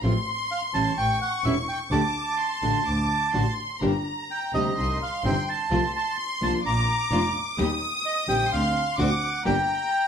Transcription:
0.03 double bass A1, nylon-string guitar F3 A3 C4 F4, violin section C6
0.51 bandoneon F5
0.74 double bass A1, nylon-string guitar E3 G3 C#4 E4, bandoneon A5
0.96 double bass A1, bandoneon G5, violin section C#6
1.21 bandoneon F#5
1.44 double bass E1, nylon-string guitar E3 G3 C#4 E4, bandoneon E5
1.68 bandoneon G5
1.90 double bass D2, nylon-string guitar D3 A3 D4 G4, bandoneon A5, violin section D6
2.38 violin section C6
2.62 double bass A1, nylon-string guitar D3 A3 D4 F#4
2.86 double bass D2, violin section D6
3.33 double bass A1, nylon-string guitar D3 A3 D4 F#4, violin section C6
3.81 double bass G1, nylon-string guitar D3 G3 A#3 D4 G4, string section G3 A#3 D4, violin section A#5
4.31 bandoneon G5
4.53 double bass D2, nylon-string guitar C3 D#3 G3 C4 G4, string section G3 A#3 D4, bandoneon D#5
4.76 double bass C2, string section G3 C4 D#4, violin section C6
5.03 bandoneon F5
5.24 double bass G1, nylon-string guitar C3 D#3 G3 C4 G4, string section G3 C4 D#4, bandoneon G5
5.49 bandoneon A5
5.70 double bass C2, nylon-string guitar C3 F3 A3 C4 F4, string section A3 C4 F4, violin section C6
5.96 bandoneon A5
6.19 bandoneon C6
6.41 double bass C2, nylon-string guitar F3 A#3 D4 F4, string section A3 C4 F4, bandoneon A5
6.64 double bass A#1, string section A#3 D4 F4, bandoneon A#5, violin section D6
7.11 double bass F1, nylon-string guitar F3 A#3 D4 F4, string section A#3 D4 F4
7.58 double bass D#2, nylon-string guitar D#3 G3 A#3 D#4 G4, string section A#3 D#4 G4, violin section D#6
8.05 bandoneon D#5
8.27 double bass A#1, nylon-string guitar D3 G3 C4 G4, string section A#3 D#4 G4, bandoneon G5
8.51 double bass D2, string section C4 D4 G4, bandoneon F5, violin section C6
8.97 double bass D2, nylon-string guitar D3 A3 C4 F#4, string section C4 D4 F#4, bandoneon F#5, violin section D6
9.45 double bass G1, nylon-string guitar D3 G3 A#3 D4 G4, string section A#3 D4 G4, bandoneon G5, violin section A#5

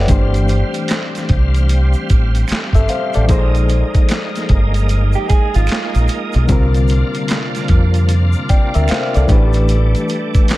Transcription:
Already playing: reed electric piano F#4 G4 A4 B4 C#5 D5 E5 F#5 G5
0.07 fingered electric bass G1, reed electric piano E3 A3 D4 G4, tonewheel organ G3 C4 F5, kick, closed hi-hat, shaker
0.12 reed electric piano C5
0.34 closed hi-hat, shaker
0.48 closed hi-hat, shaker
0.74 closed hi-hat, shaker
0.88 finger snap, snare, clap, closed hi-hat, shaker
1.15 snare, closed hi-hat, shaker
1.29 fingered electric bass C2, kick, closed hi-hat
1.54 closed hi-hat, shaker
1.69 closed hi-hat, shaker
1.93 shaker
2.09 fingered electric bass A1, kick, closed hi-hat, shaker
2.35 closed hi-hat, shaker
2.48 finger snap, muted fingered electric bass stroke, closed hi-hat, shaker
2.52 snare, clap
2.73 fingered electric bass G1, reed electric piano A4 E5, kick, closed hi-hat, shaker
2.89 reed electric piano C5 F5, closed hi-hat, shaker
3.13 fingered electric bass A1, reed electric piano A4 D5, closed hi-hat, shaker
3.26 reed electric piano F3 A#3 D#4 G#4, tonewheel organ G#3 A#3 D#4, kick, closed hi-hat, shaker
3.30 fingered electric bass A#1, reed electric piano C5
3.55 closed hi-hat, shaker
3.69 closed hi-hat, shaker
3.94 kick, closed hi-hat, shaker
4.09 finger snap, snare, clap, closed hi-hat, shaker
4.35 snare, closed hi-hat, shaker
4.49 fingered electric bass G1, kick, closed hi-hat
4.74 closed hi-hat, shaker
4.89 closed hi-hat, shaker
5.13 clean electric guitar G4, shaker
5.29 clean electric guitar G#4, muted fingered electric bass stroke, kick, closed hi-hat, shaker
5.54 fingered electric bass G#1, clean electric guitar F4, closed hi-hat, shaker
5.67 finger snap, closed hi-hat, shaker
5.72 snare, clap
5.95 fingered electric bass A#1, closed hi-hat, shaker
6.08 closed hi-hat, shaker
6.33 fingered electric bass B1, closed hi-hat, shaker
6.47 fingered electric bass C2, tonewheel organ C3 D4 F4, reed electric piano D3 G3 C4 F4, kick, closed hi-hat, shaker
6.52 reed electric piano A#4
6.74 closed hi-hat, shaker
6.88 closed hi-hat, shaker
7.14 closed hi-hat, shaker
7.28 finger snap, snare, clap, closed hi-hat, shaker
7.55 snare, closed hi-hat, shaker
7.68 fingered electric bass F2, kick, closed hi-hat
7.94 closed hi-hat, shaker
8.09 closed hi-hat, shaker
8.33 shaker
8.49 reed electric piano D5 G5, muted fingered electric bass stroke, kick, closed hi-hat, shaker
8.74 fingered electric bass D2, reed electric piano A#4 E5, closed hi-hat, shaker
8.88 reed electric piano C5 F5, finger snap, muted fingered electric bass stroke, closed hi-hat, shaker
8.92 snare, clap
9.14 fingered electric bass C2, reed electric piano A4 D5, closed hi-hat, shaker
9.27 fingered electric bass A1, reed electric piano E3 A3 D4 G4, tonewheel organ G3 A3, kick, closed hi-hat, shaker
9.32 reed electric piano B4
9.53 closed hi-hat, shaker
9.69 closed hi-hat, shaker
9.95 closed hi-hat, shaker
10.09 closed hi-hat, shaker
10.34 kick, closed hi-hat, shaker
10.48 finger snap, snare, clap, closed hi-hat, shaker

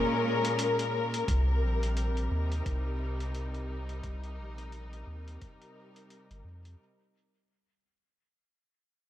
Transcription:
Already playing: string section A#2 G#3 C#4 A#4
0.45 closed hi-hat
0.59 closed hi-hat
0.79 closed hi-hat
1.14 closed hi-hat
1.28 sub bass C2, string section C3, kick, closed hi-hat
1.53 string section G3
1.62 sub bass A#1
1.83 closed hi-hat
1.97 closed hi-hat
2.17 closed hi-hat
2.31 sub bass D#2, string section D#4
2.52 closed hi-hat
2.66 sub bass C2, kick, closed hi-hat
3.20 closed hi-hat
3.35 closed hi-hat
3.54 closed hi-hat
3.89 closed hi-hat
4.03 sub bass C2, kick, closed hi-hat
4.24 closed hi-hat
4.38 sub bass A#1
4.58 closed hi-hat
4.72 closed hi-hat
4.93 closed hi-hat
5.07 sub bass D#2
5.28 closed hi-hat
5.41 kick, closed hi-hat
5.62 closed hi-hat
5.96 closed hi-hat
6.10 closed hi-hat
6.30 sub bass G1, closed hi-hat
6.44 sub bass F2
6.65 closed hi-hat

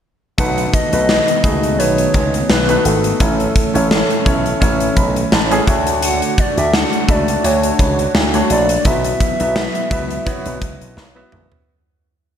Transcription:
0.38 slap bass B1, grand piano B2 A3 D#4 F#4 B4, analog synth pad D#3 A3 B3, soft synth lead F#5, kick, closed hi-hat
0.58 closed hi-hat
0.73 soft synth lead D#5, kick, closed hi-hat
0.92 slap bass B1, grand piano A3 D#4 F#4 B4, closed hi-hat
1.09 snare
1.28 closed hi-hat
1.43 slap bass C#2, grand piano A3 D#4 F#4 G#4, kick, closed hi-hat
1.63 closed hi-hat
1.78 slap bass B1, grand piano A3 D#4 F#4 B4, soft synth lead C#5, closed hi-hat
1.98 closed hi-hat
2.14 slap bass C#2, kick, closed hi-hat
2.34 closed hi-hat
2.49 slap bass B1, soft synth lead B4, snare
2.68 grand piano A3 D#4 F#4 B4, closed hi-hat
2.84 slap bass G#1, soft synth lead A4, closed hi-hat
3.04 closed hi-hat
3.19 slap bass A1, grand piano A2 A3 C#4 E4 C#5, analog synth pad E3 C#4, kick, closed hi-hat
3.40 closed hi-hat
3.56 kick, closed hi-hat
3.74 slap bass A1, grand piano A3 C#4 E4 C#5, closed hi-hat
3.91 snare
4.10 closed hi-hat
4.25 slap bass B1, grand piano A3 C#4 E4 C#5, kick, closed hi-hat
4.46 closed hi-hat
4.60 slap bass A1, grand piano A3 C#4 E4 C#5, kick, closed hi-hat
4.80 closed hi-hat
4.96 slap bass B1, grand piano B5, kick, closed hi-hat
5.16 closed hi-hat
5.32 slap bass A1, grand piano A5, snare
5.51 grand piano A3 C#4 E4 G#4 G#5, closed hi-hat
5.66 slap bass D2, grand piano D3 A3 D4 F#4 C#5 F#5, analog synth pad D4 F#4, kick, closed hi-hat
5.87 closed hi-hat
6.03 soft synth lead F#5, closed hi-hat
6.22 closed hi-hat
6.38 soft synth lead D5, kick, closed hi-hat
6.57 slap bass D2, grand piano A3 D4 F#4 D5, soft synth lead E5, closed hi-hat
6.74 soft synth lead F#5, snare
6.93 closed hi-hat
7.08 slap bass C#2, grand piano A3 D4 F#4 E5, soft synth lead D5, kick, closed hi-hat
7.28 closed hi-hat
7.43 slap bass D2, grand piano A3 D4 F#4 C#5, soft synth lead C#5, closed hi-hat
7.63 closed hi-hat
7.79 slap bass C#2, kick, closed hi-hat
7.99 closed hi-hat
8.15 slap bass D2, snare
8.34 grand piano A3 D4 F#4 C#5, closed hi-hat
8.50 slap bass A#1, soft synth lead D5, closed hi-hat
8.69 closed hi-hat
8.85 slap bass B1, grand piano B2 B3 E4 F#4 E5, analog synth pad F#3 B3 E4, soft synth lead E5, kick, closed hi-hat
9.04 closed hi-hat
9.20 kick, closed hi-hat
9.40 slap bass B1, grand piano B3 E4 F#4 E5, closed hi-hat
9.56 snare
9.75 closed hi-hat
9.90 slap bass C#2, grand piano B3 E4 F#4 E5, kick, closed hi-hat
10.10 closed hi-hat
10.26 grand piano B3 E4 F#4 C#5, kick, closed hi-hat
10.46 slap bass B1, closed hi-hat
10.62 slap bass C#2, kick, closed hi-hat
10.81 slap bass B1, closed hi-hat
10.97 slap bass B1, snare
11.15 grand piano B3 E4 F#4 E5
11.32 slap bass A#1, mid tom
11.52 floor tom

